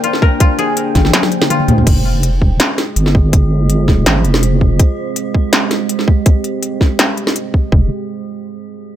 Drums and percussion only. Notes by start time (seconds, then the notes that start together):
0.04 closed hi-hat
0.13 snare
0.22 kick
0.40 kick, closed hi-hat
0.59 closed hi-hat
0.77 closed hi-hat
0.95 kick, snare, closed hi-hat
1.05 snare
1.13 snare, closed hi-hat, high tom
1.23 snare, high tom
1.32 closed hi-hat
1.42 snare, mid tom
1.50 closed hi-hat, mid tom
1.60 mid tom
1.68 closed hi-hat, mid tom
1.78 mid tom
1.87 kick, closed hi-hat, crash
2.23 closed hi-hat
2.42 kick
2.60 snare, closed hi-hat
2.78 snare, closed hi-hat
2.96 closed hi-hat
3.06 snare
3.15 kick
3.33 kick, closed hi-hat
3.70 closed hi-hat
3.88 kick, snare
4.06 snare, closed hi-hat
4.25 closed hi-hat
4.34 snare
4.43 closed hi-hat
4.61 kick
4.79 kick, closed hi-hat
5.16 closed hi-hat
5.34 kick
5.53 snare, closed hi-hat
5.71 snare, closed hi-hat
5.89 closed hi-hat
5.99 snare
6.08 kick
6.26 kick, closed hi-hat
6.44 closed hi-hat
6.63 closed hi-hat
6.81 kick, snare
6.99 snare, closed hi-hat
7.17 closed hi-hat
7.27 snare
7.36 closed hi-hat
7.54 kick
7.72 kick